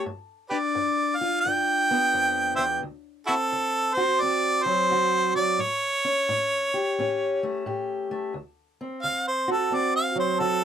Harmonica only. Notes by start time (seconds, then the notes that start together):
0.50 G4 B4 D5
1.16 F5
1.41 G5
2.56 C5 E5 G5
3.27 E4 F#4 A4
3.94 C5
4.21 D5
4.63 C5
5.35 D5
5.61 C#5
9.02 F5
9.27 C5
9.52 A4
9.75 D5
9.96 F5
10.19 C5
10.39 A4